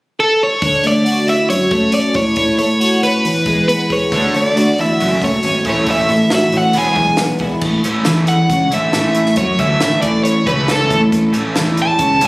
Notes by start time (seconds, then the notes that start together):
0.20 A4
0.43 C#5
0.62 D3, kick, open hi-hat
0.83 A3 D5, open hi-hat
1.05 F#4, open hi-hat
1.27 E4 E5, open hi-hat
1.50 F#2 C#5, open hi-hat
1.71 A3 C#5, kick, open hi-hat
1.91 C#4 D5, open hi-hat
2.14 A2 C#5, kick, open hi-hat
2.36 A2, kick, open hi-hat
2.59 A3 C#5, open hi-hat
2.80 F#4, open hi-hat
3.02 C#4 B4, open hi-hat
3.24 E2, open hi-hat
3.46 G#3, kick, open hi-hat
3.68 B3 B4, open hi-hat
3.90 G#4 C#5, kick, open hi-hat
4.12 D2 D3 A3 D4 F#4, kick, open hi-hat
4.34 D2 A3 D4 C#5, open hi-hat
4.48 D5
4.56 D2 A3 D4 F#4, open hi-hat
4.78 E2 A3 D4 E4 E5, open hi-hat
4.99 F#1 F#2 A3 C#4 F#4, open hi-hat
5.21 F#1 A3 C#4 C#5, kick, open hi-hat
5.43 G#1 A3 C#4, open hi-hat
5.64 A1 A2 E3 A3 C#4, kick, open hi-hat
5.70 C#5
5.87 A1 A2 E3 A3 C#4, kick, open hi-hat
5.91 E5
6.09 A1 E3 A3, open hi-hat
6.30 A1 E3 A3 F#4, snare, open hi-hat
6.35 E5
6.52 A1 E3 A3 C#4, open hi-hat
6.58 F#5
6.73 E1 E2 B3 E4 G#4, open hi-hat
6.78 G#5
6.96 B1 G#3 B3 E4, kick, open hi-hat
7.17 B1 B3 E4, snare, open hi-hat
7.39 E1 B3 E4, kick, open hi-hat
7.61 A1 A2, kick, crash
7.84 A1 A2 E3 A3 C#4, closed hi-hat
8.05 E2 E3 A3 C#4, snare, closed hi-hat
8.27 F#5, closed hi-hat
8.49 C#2 C#3, kick, closed hi-hat
8.71 A1 A2 E3 A3 C#4 E5, closed hi-hat
8.93 A1 A2 E3 A3 C#4, snare, closed hi-hat
9.15 closed hi-hat
9.26 snare
9.36 F#2 F#3 C#5, kick, closed hi-hat
9.59 D2 D3 E3 A3 C#4 E5, kick, closed hi-hat
9.80 A1 A2 E3 A3 C#4, snare, closed hi-hat
10.02 A1 A2 D5, kick, closed hi-hat
10.24 C#5, closed hi-hat
10.46 C#2 C#3 E3 A3 C#4 B4, kick, closed hi-hat
10.68 E3 A3 C#4 A4, snare, closed hi-hat
10.90 A1 A2, kick, closed hi-hat
11.12 A1 A2, kick, closed hi-hat
11.33 A1 A2 E3 A3 C#4, closed hi-hat
11.55 E2 E3 A3 C#4, snare, closed hi-hat
11.77 closed hi-hat
11.82 A5
11.99 C#2 C#3, kick, closed hi-hat
12.21 A1 A2 E3 A3 C#4, closed hi-hat